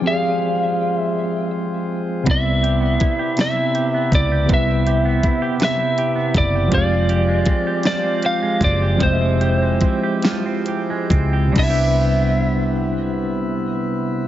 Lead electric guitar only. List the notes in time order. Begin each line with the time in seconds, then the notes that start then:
0.07 F5
1.00 E5
2.31 E5
3.41 E5
4.15 D5
4.54 E5
5.64 E5
6.38 D5
6.74 D5
7.87 D5
8.26 F5
8.64 D5
9.03 C5
11.59 E5